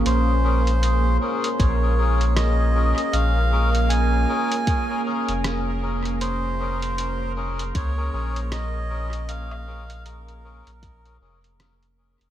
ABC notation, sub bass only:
X:1
M:4/4
L:1/16
Q:"Swing 16ths" 1/4=78
K:Bbm
V:1 name="Sub bass" clef=bass
B,,,6 z2 B,,,6- B,,, z | B,,,6 z4 z F,,,4- F,,,- | F,,,8 D,,2 B,,,6- | B,,,6- B,,, B,,,3 F,,,4- F,,, F,,, |]